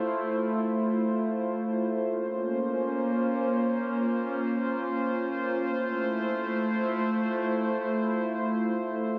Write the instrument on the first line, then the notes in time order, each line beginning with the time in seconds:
ambient pad
Already playing: A3 E4 F4 C5
2.09 A#3 C#4 F4 C5
5.64 A3 E4